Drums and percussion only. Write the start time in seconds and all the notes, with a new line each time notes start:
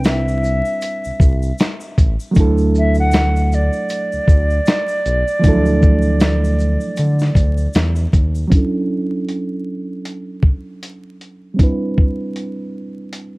0.04 snare, closed hi-hat, shaker
0.28 shaker
0.43 shaker
0.45 shaker
0.65 shaker
0.81 closed hi-hat, shaker
1.04 shaker
1.20 kick, shaker
1.42 shaker
1.58 snare, closed hi-hat, shaker
1.80 shaker
1.98 kick, closed hi-hat, shaker
2.20 shaker
2.35 kick, closed hi-hat, shaker
2.58 shaker
2.75 shaker
2.94 shaker
3.11 snare, closed hi-hat, shaker
3.36 shaker
3.52 shaker
3.73 shaker
3.89 closed hi-hat, shaker
4.12 shaker
4.28 kick, shaker
4.50 shaker
4.66 snare, closed hi-hat, shaker
4.88 shaker
5.06 closed hi-hat, shaker
5.28 shaker
5.44 kick, closed hi-hat, shaker
5.66 shaker
5.82 kick, shaker
6.02 shaker
6.20 snare, closed hi-hat, shaker
6.44 shaker
6.59 shaker
6.81 shaker
6.97 closed hi-hat, shaker
7.19 snare, shaker
7.35 kick, closed hi-hat, shaker
7.57 shaker
7.73 snare, closed hi-hat, shaker
7.96 shaker
8.13 kick, closed hi-hat, shaker
8.35 shaker
8.52 kick, closed hi-hat
9.29 closed hi-hat
10.05 closed hi-hat
10.43 kick
10.83 closed hi-hat
11.21 closed hi-hat
11.59 kick, closed hi-hat
11.98 kick
12.36 closed hi-hat
13.13 closed hi-hat